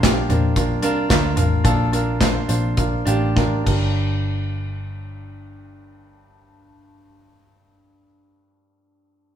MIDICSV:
0, 0, Header, 1, 4, 480
1, 0, Start_track
1, 0, Key_signature, -2, "minor"
1, 0, Tempo, 536673
1, 1471, Time_signature, 4, 2, 24, 8
1, 1471, Tempo, 572519
1, 2911, Tempo, 615385
1, 7587, End_track
2, 0, Start_track
2, 0, Title_t, "Grand piano"
2, 0, Program_c, 0, 0
2, 0, Control_c, 0, 64, 127
2, 0, Note_on_c, 0, 46, 67
2, 0, Note_on_c, 0, 62, 79
2, 0, Note_on_c, 0, 65, 72
2, 0, Note_on_c, 0, 70, 99
2, 0, Note_on_c, 0, 72, 83
2, 30, Note_off_c, 0, 62, 0
2, 30, Note_on_c, 0, 62, 77
2, 35, Note_off_c, 0, 65, 0
2, 35, Note_on_c, 0, 65, 74
2, 41, Note_on_c, 0, 67, 83
2, 231, Note_off_c, 0, 46, 0
2, 232, Note_off_c, 0, 62, 0
2, 234, Note_off_c, 0, 65, 0
2, 237, Note_off_c, 0, 67, 0
2, 263, Note_on_c, 0, 62, 73
2, 267, Note_on_c, 0, 65, 62
2, 272, Note_off_c, 0, 70, 0
2, 272, Note_on_c, 0, 70, 79
2, 467, Note_off_c, 0, 62, 0
2, 469, Note_off_c, 0, 65, 0
2, 472, Note_off_c, 0, 70, 0
2, 505, Note_on_c, 0, 62, 64
2, 509, Note_on_c, 0, 65, 62
2, 512, Note_on_c, 0, 70, 77
2, 708, Note_off_c, 0, 62, 0
2, 711, Note_off_c, 0, 65, 0
2, 712, Note_off_c, 0, 70, 0
2, 737, Note_on_c, 0, 62, 101
2, 740, Note_on_c, 0, 65, 86
2, 744, Note_on_c, 0, 70, 105
2, 945, Note_off_c, 0, 62, 0
2, 947, Note_off_c, 0, 65, 0
2, 949, Note_off_c, 0, 70, 0
2, 978, Note_on_c, 0, 62, 84
2, 986, Note_on_c, 0, 65, 91
2, 988, Note_on_c, 0, 70, 91
2, 1188, Note_off_c, 0, 62, 0
2, 1192, Note_off_c, 0, 65, 0
2, 1193, Note_off_c, 0, 70, 0
2, 1217, Note_on_c, 0, 62, 68
2, 1220, Note_on_c, 0, 65, 72
2, 1225, Note_on_c, 0, 70, 78
2, 1431, Note_off_c, 0, 62, 0
2, 1433, Note_off_c, 0, 65, 0
2, 1435, Note_off_c, 0, 70, 0
2, 1467, Note_on_c, 0, 62, 88
2, 1471, Note_on_c, 0, 46, 64
2, 1471, Note_on_c, 0, 65, 82
2, 1476, Note_on_c, 0, 69, 98
2, 1668, Note_off_c, 0, 62, 0
2, 1670, Note_off_c, 0, 65, 0
2, 1672, Note_off_c, 0, 69, 0
2, 1705, Note_on_c, 0, 62, 81
2, 1709, Note_on_c, 0, 65, 72
2, 1716, Note_on_c, 0, 70, 88
2, 1905, Note_off_c, 0, 62, 0
2, 1907, Note_off_c, 0, 65, 0
2, 1911, Note_off_c, 0, 70, 0
2, 1936, Note_on_c, 0, 62, 74
2, 1941, Note_on_c, 0, 65, 65
2, 1943, Note_off_c, 0, 72, 0
2, 1943, Note_on_c, 0, 72, 87
2, 2141, Note_off_c, 0, 62, 0
2, 2143, Note_off_c, 0, 46, 0
2, 2143, Note_off_c, 0, 65, 0
2, 2144, Note_off_c, 0, 72, 0
2, 2175, Note_on_c, 0, 62, 73
2, 2181, Note_on_c, 0, 65, 62
2, 2181, Note_on_c, 0, 72, 79
2, 2382, Note_off_c, 0, 62, 0
2, 2385, Note_off_c, 0, 65, 0
2, 2385, Note_off_c, 0, 72, 0
2, 2415, Note_on_c, 0, 62, 63
2, 2417, Note_on_c, 0, 65, 57
2, 2420, Note_on_c, 0, 70, 61
2, 2625, Note_off_c, 0, 62, 0
2, 2626, Note_off_c, 0, 65, 0
2, 2628, Note_off_c, 0, 70, 0
2, 2653, Note_on_c, 0, 62, 94
2, 2660, Note_on_c, 0, 65, 70
2, 2666, Note_on_c, 0, 67, 96
2, 2870, Note_off_c, 0, 62, 0
2, 2873, Note_off_c, 0, 65, 0
2, 2876, Note_off_c, 0, 67, 0
2, 2908, Note_on_c, 0, 62, 77
2, 2909, Note_on_c, 0, 65, 73
2, 2913, Note_on_c, 0, 70, 80
2, 3110, Note_off_c, 0, 62, 0
2, 3110, Note_off_c, 0, 65, 0
2, 3112, Note_off_c, 0, 70, 0
2, 3129, Note_on_c, 0, 62, 57
2, 3144, Note_on_c, 0, 67, 53
2, 3147, Note_on_c, 0, 43, 54
2, 3154, Control_c, 0, 64, 0
2, 3160, Note_on_c, 0, 70, 63
2, 3245, Control_c, 0, 64, 127
2, 3395, Control_c, 0, 64, 0
2, 3532, Control_c, 0, 64, 127
2, 6540, Note_off_c, 0, 62, 0
2, 6555, Note_off_c, 0, 67, 0
2, 6558, Note_off_c, 0, 43, 0
2, 6571, Note_off_c, 0, 70, 0
2, 7587, End_track
3, 0, Start_track
3, 0, Title_t, "Picked electric bass"
3, 0, Program_c, 1, 34
3, 0, Note_on_c, 1, 34, 95
3, 231, Note_off_c, 1, 34, 0
3, 262, Note_on_c, 1, 34, 88
3, 737, Note_off_c, 1, 34, 0
3, 737, Note_on_c, 1, 36, 88
3, 963, Note_off_c, 1, 36, 0
3, 986, Note_on_c, 1, 38, 90
3, 1226, Note_off_c, 1, 38, 0
3, 1226, Note_on_c, 1, 33, 86
3, 1454, Note_off_c, 1, 33, 0
3, 1473, Note_on_c, 1, 34, 87
3, 2144, Note_off_c, 1, 34, 0
3, 2181, Note_on_c, 1, 34, 72
3, 2631, Note_off_c, 1, 34, 0
3, 2663, Note_on_c, 1, 33, 69
3, 3114, Note_off_c, 1, 33, 0
3, 3146, Note_on_c, 1, 31, 69
3, 6557, Note_off_c, 1, 31, 0
3, 7587, End_track
4, 0, Start_track
4, 0, Title_t, "Drums"
4, 28, Note_on_c, 9, 38, 98
4, 29, Note_on_c, 9, 42, 85
4, 30, Note_on_c, 9, 36, 93
4, 39, Note_on_c, 9, 39, 71
4, 118, Note_off_c, 9, 38, 0
4, 118, Note_off_c, 9, 42, 0
4, 119, Note_off_c, 9, 36, 0
4, 128, Note_off_c, 9, 39, 0
4, 266, Note_on_c, 9, 43, 55
4, 268, Note_on_c, 9, 42, 52
4, 355, Note_off_c, 9, 43, 0
4, 357, Note_off_c, 9, 42, 0
4, 503, Note_on_c, 9, 36, 81
4, 503, Note_on_c, 9, 42, 70
4, 592, Note_off_c, 9, 36, 0
4, 592, Note_off_c, 9, 42, 0
4, 738, Note_on_c, 9, 42, 52
4, 827, Note_off_c, 9, 42, 0
4, 985, Note_on_c, 9, 42, 77
4, 986, Note_on_c, 9, 36, 89
4, 986, Note_on_c, 9, 38, 88
4, 997, Note_on_c, 9, 39, 75
4, 1075, Note_off_c, 9, 36, 0
4, 1075, Note_off_c, 9, 42, 0
4, 1076, Note_off_c, 9, 38, 0
4, 1086, Note_off_c, 9, 39, 0
4, 1225, Note_on_c, 9, 42, 65
4, 1229, Note_on_c, 9, 43, 60
4, 1315, Note_off_c, 9, 42, 0
4, 1319, Note_off_c, 9, 43, 0
4, 1473, Note_on_c, 9, 36, 98
4, 1475, Note_on_c, 9, 42, 82
4, 1557, Note_off_c, 9, 36, 0
4, 1559, Note_off_c, 9, 42, 0
4, 1712, Note_on_c, 9, 42, 54
4, 1796, Note_off_c, 9, 42, 0
4, 1942, Note_on_c, 9, 36, 86
4, 1943, Note_on_c, 9, 38, 84
4, 1943, Note_on_c, 9, 42, 68
4, 1953, Note_on_c, 9, 39, 67
4, 2025, Note_off_c, 9, 36, 0
4, 2027, Note_off_c, 9, 38, 0
4, 2027, Note_off_c, 9, 42, 0
4, 2037, Note_off_c, 9, 39, 0
4, 2179, Note_on_c, 9, 42, 57
4, 2263, Note_off_c, 9, 42, 0
4, 2417, Note_on_c, 9, 42, 72
4, 2419, Note_on_c, 9, 36, 79
4, 2501, Note_off_c, 9, 42, 0
4, 2503, Note_off_c, 9, 36, 0
4, 2663, Note_on_c, 9, 42, 55
4, 2747, Note_off_c, 9, 42, 0
4, 2911, Note_on_c, 9, 38, 42
4, 2914, Note_on_c, 9, 36, 86
4, 2989, Note_off_c, 9, 38, 0
4, 2992, Note_off_c, 9, 36, 0
4, 3147, Note_on_c, 9, 36, 71
4, 3148, Note_on_c, 9, 49, 61
4, 3225, Note_off_c, 9, 36, 0
4, 3226, Note_off_c, 9, 49, 0
4, 7587, End_track
0, 0, End_of_file